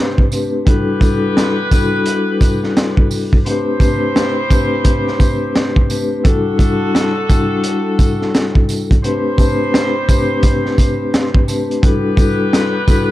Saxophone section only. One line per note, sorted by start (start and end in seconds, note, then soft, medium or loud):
0.00 0.27 E4 medium
0.00 0.27 G4 medium
0.00 0.27 C5 medium
0.68 3.07 B3 medium
0.68 3.07 G4 medium
0.68 3.07 B4 loud
3.46 5.86 E4 medium
3.46 5.86 G4 medium
3.46 5.86 C5 medium
6.25 8.65 D4 medium
6.25 8.65 F#4 medium
6.25 8.65 A4 loud
9.03 11.44 E4 medium
9.03 11.44 G4 medium
9.03 11.44 C5 medium
11.84 13.11 B3 medium
11.84 13.11 G4 medium
11.84 13.11 B4 loud